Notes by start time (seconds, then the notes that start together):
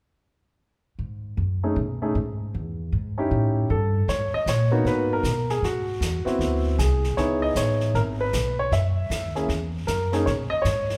0.99 G#2
1.37 F#2
1.63 A3 C#4 D#4 G#4
1.76 B2
2.02 A3 C#4 D#4 G#4
2.15 G#2
2.54 E2
2.92 G#2
3.18 C#4 D#4 E4 G4
3.31 A2
3.70 G2 A4
4.08 G#2 C#5, brush sweep, snare
4.33 D#5, muted upright bass stroke
4.46 A#2 C#5, snare, hi-hat pedal
4.71 A#3 B3 D#4 F#4
4.85 G#2 B4, brush sweep, snare
5.13 A#4
5.23 B2, snare, hi-hat pedal
5.50 G#4, snare
5.62 G#2 F#4, brush sweep, snare
6.00 E2, snare, hi-hat pedal
6.25 B3 C4 E4 F#4, muted upright bass stroke, snare
6.39 D2, brush sweep, snare
6.78 C2 G#4, snare, hi-hat pedal
7.04 snare
7.17 C#2 B3 D#4 E4 G#4 C#5, brush sweep, snare
7.42 D#5
7.55 A1 C#5, snare, hi-hat pedal
7.81 snare
7.94 G#1 A#4, brush sweep, snare
8.21 B4
8.33 B1, snare, hi-hat pedal
8.59 C#5
8.71 F#2 E5, brush sweep, snare
9.10 D#2, snare, hi-hat pedal
9.35 A#3 C#4 E4 G#4, snare
9.49 E2, brush sweep, snare
9.87 F#2 A#4, snare, hi-hat pedal
10.12 A#3 C#4 D#4 G#4, snare
10.26 B2 C#5, brush sweep, snare
10.50 D#5, muted upright bass stroke
10.62 G#2 C#5, snare, hi-hat pedal
10.90 snare